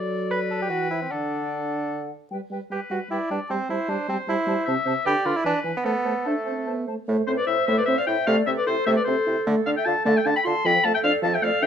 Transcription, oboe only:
0.00 0.32 D5 medium
0.31 1.13 B4 medium
1.11 2.12 A4 soft
2.71 3.08 B4 medium
3.11 3.52 D5 medium
3.51 4.65 C5 medium
4.66 5.07 E5 medium
5.06 5.43 D5 medium
5.44 5.86 B4 medium
5.84 6.87 A4 medium
7.27 7.32 C5 medium
7.37 7.46 D5 medium
7.47 7.66 E5 medium
7.67 7.77 E5 medium
7.78 7.82 D5 medium
7.85 7.96 E5 medium
7.98 8.02 F5 medium
8.07 8.26 G5 medium
8.27 8.36 F5 loud
8.46 8.51 E5 medium
8.58 8.66 D5 medium
8.67 8.86 C5 loud
8.86 8.91 E5 loud
8.96 9.01 D5 medium
9.04 9.44 C5 medium
9.66 9.70 F5 medium
9.77 9.87 G5 medium
9.85 10.05 A5 loud
10.06 10.18 A5 medium
10.17 10.27 G5 medium
10.26 10.35 A5 medium
10.36 10.40 B5 medium
10.45 10.67 C6 loud
10.65 10.86 B5 loud
10.84 10.94 A5 medium
10.94 10.98 G5 loud
11.04 11.12 F5 loud
11.23 11.36 A5 loud
11.34 11.44 G5 medium
11.43 11.64 F5 loud
11.62 11.67 G5 medium

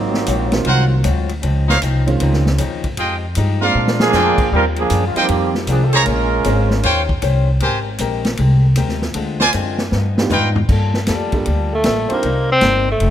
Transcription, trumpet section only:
0.66 0.83 F4 medium
0.66 0.83 A#4 medium
0.66 0.83 C5 medium
0.66 0.83 F#5 medium
1.68 1.77 D#4 medium
1.68 1.77 C5 medium
1.68 1.78 C#5 medium
1.68 1.77 F5 loud
2.98 3.15 F4 medium
2.98 3.15 G#4 medium
2.98 3.15 D#5 medium
2.98 3.15 G5 medium
3.61 4.11 F4 loud
3.61 4.11 A#4 medium
3.61 4.11 D5 medium
3.61 4.10 F5 loud
4.13 4.52 F4 medium
4.13 4.52 A#4 medium
4.13 4.52 D5 medium
4.13 4.52 G5 loud
5.16 5.25 F4 medium
5.16 5.25 C5 medium
5.16 5.25 D#5 medium
5.16 5.25 G5 loud
5.93 6.02 G#4 loud
5.93 6.02 C5 loud
5.93 6.02 C#5 medium
5.93 6.02 A#5 loud
6.84 7.01 F4 medium
6.84 7.01 C5 medium
6.84 7.01 C#5 medium
6.84 7.01 G5 loud
7.61 7.78 G4 medium
7.61 7.78 A#4 medium
7.61 7.78 C5 medium
7.61 7.78 G#5 medium
9.40 9.49 F4 loud
9.40 9.49 C5 medium
9.40 9.49 D5 medium
9.40 9.49 G#5 loud
10.31 10.48 F4 medium
10.31 10.48 B4 medium
10.31 10.48 D#5 medium
10.31 10.48 G5 medium

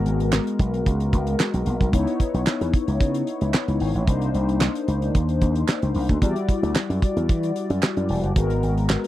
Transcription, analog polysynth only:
0.00 1.89 G#3 medium
0.00 1.89 B3 medium
0.00 1.89 F#4 medium
0.00 1.90 A#4 medium
1.92 4.03 B3 medium
1.92 4.03 D#4 medium
1.92 4.04 E4 medium
1.92 4.04 C#5 medium
4.07 6.18 A#3 medium
4.07 6.18 D4 medium
4.07 6.18 D#4 medium
4.07 6.18 C5 medium
6.21 8.32 G3 medium
6.21 8.32 E4 medium
6.21 8.32 F#4 medium
6.21 8.33 D5 medium
8.35 9.07 G#3 medium
8.35 9.07 B3 medium
8.35 9.07 F#4 medium
8.35 9.07 A#4 medium

